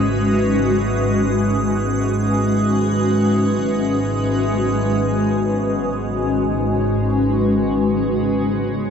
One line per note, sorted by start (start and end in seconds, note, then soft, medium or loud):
0.00 4.77 G#1 medium
0.00 4.78 G#2 medium
0.00 8.90 G#3 medium
0.00 8.90 C#4 medium
0.00 8.90 F#4 medium
0.00 8.90 B4 medium
0.00 4.76 E5 medium
0.00 4.76 D#6 medium
4.79 8.90 G#1 medium
4.79 8.90 G#2 medium